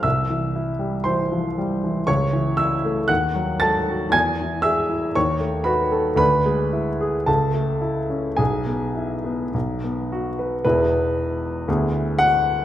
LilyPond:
<<
  \new Staff \with { instrumentName = "Grand piano" } { \time 2/4 \key c \major \tempo 4 = 58 <e'' e'''>4 <c'' c'''>4 | \key e \major <cis'' cis'''>8 <e'' e'''>8 <fis'' fis'''>8 <a'' a'''>8 | <gis'' gis'''>8 <e'' e'''>8 <cis'' cis'''>8 <b' b''>8 | <b' b''>4 <a' a''>4 |
<gis' gis''>4 r4 | b'4. fis''8 | }
  \new Staff \with { instrumentName = "Grand piano" } { \time 2/4 \key c \major c,16 e16 e'16 g16 e16 f16 g16 e16 | \key e \major cis,16 e16 e'16 a16 dis,16 fis16 a'16 fis'16 | e,16 e16 gis'16 e'16 dis,16 a16 fis'16 a'16 | d,16 gis16 e'16 gis'16 cis,16 a16 e'16 cis'16 |
b,,16 b16 e'16 b16 b,,16 b16 fis'16 b'16 | <e,, e, b e' gis'>4 <d, b e' gis'>4 | }
>>